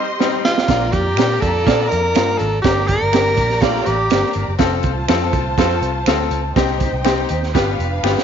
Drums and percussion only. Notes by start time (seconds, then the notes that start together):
0.20 snare
0.45 snare
0.58 snare
0.68 kick, snare, closed hi-hat
0.92 kick, closed hi-hat
1.17 finger snap, snare, closed hi-hat
1.42 kick, closed hi-hat
1.67 kick, snare, closed hi-hat
1.92 closed hi-hat
2.15 finger snap, snare, closed hi-hat
2.39 closed hi-hat
2.64 kick, snare, closed hi-hat
2.88 kick, closed hi-hat
3.13 finger snap, snare, closed hi-hat
3.37 kick, closed hi-hat
3.50 snare
3.62 kick, snare, closed hi-hat
3.86 closed hi-hat
4.10 finger snap, snare, closed hi-hat
4.33 closed hi-hat
4.59 kick, snare, closed hi-hat
4.83 kick, closed hi-hat
5.08 finger snap, snare, closed hi-hat
5.33 kick, closed hi-hat
5.58 kick, snare, closed hi-hat
5.82 closed hi-hat
6.06 finger snap, snare, closed hi-hat
6.31 closed hi-hat
6.56 kick, snare, closed hi-hat
6.80 kick, closed hi-hat
7.05 finger snap, snare, closed hi-hat
7.29 closed hi-hat
7.43 snare
7.55 kick, snare, closed hi-hat
7.80 closed hi-hat
8.04 finger snap, snare
8.18 snare